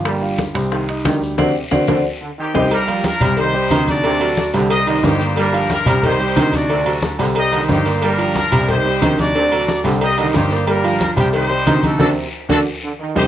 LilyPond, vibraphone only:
\new Staff \with { instrumentName = "Vibraphone" } { \time 4/4 \key g \minor \tempo 4 = 181 r1 | <c'' d'' fis''>8 r8 <c'' d'' fis''>8 <c'' d'' fis''>8 r4. <c'' ees'' g''>8 | r1 | r1 |
r1 | r1 | r1 | r1 |
r1 | r1 | }